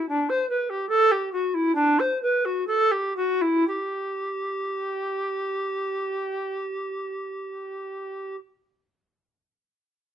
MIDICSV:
0, 0, Header, 1, 2, 480
1, 0, Start_track
1, 0, Tempo, 832178
1, 46, Time_signature, 4, 2, 24, 8
1, 1008, Tempo, 920245
1, 1488, Tempo, 1011804
1, 5034, End_track
2, 0, Start_track
2, 0, Title_t, "Recorder"
2, 0, Program_c, 0, 74
2, 49, Note_on_c, 0, 62, 66
2, 168, Note_on_c, 0, 72, 57
2, 177, Note_off_c, 0, 62, 0
2, 279, Note_off_c, 0, 72, 0
2, 283, Note_on_c, 0, 71, 52
2, 400, Note_on_c, 0, 67, 56
2, 408, Note_off_c, 0, 71, 0
2, 508, Note_off_c, 0, 67, 0
2, 512, Note_on_c, 0, 69, 69
2, 641, Note_on_c, 0, 67, 58
2, 650, Note_off_c, 0, 69, 0
2, 759, Note_off_c, 0, 67, 0
2, 762, Note_on_c, 0, 66, 47
2, 888, Note_on_c, 0, 64, 49
2, 896, Note_off_c, 0, 66, 0
2, 1004, Note_off_c, 0, 64, 0
2, 1008, Note_on_c, 0, 62, 69
2, 1135, Note_on_c, 0, 72, 60
2, 1143, Note_off_c, 0, 62, 0
2, 1248, Note_off_c, 0, 72, 0
2, 1255, Note_on_c, 0, 71, 49
2, 1373, Note_on_c, 0, 66, 47
2, 1381, Note_off_c, 0, 71, 0
2, 1485, Note_off_c, 0, 66, 0
2, 1489, Note_on_c, 0, 69, 59
2, 1603, Note_on_c, 0, 67, 52
2, 1610, Note_off_c, 0, 69, 0
2, 1720, Note_off_c, 0, 67, 0
2, 1723, Note_on_c, 0, 66, 46
2, 1841, Note_on_c, 0, 64, 46
2, 1848, Note_off_c, 0, 66, 0
2, 1961, Note_off_c, 0, 64, 0
2, 1964, Note_on_c, 0, 67, 54
2, 4186, Note_off_c, 0, 67, 0
2, 5034, End_track
0, 0, End_of_file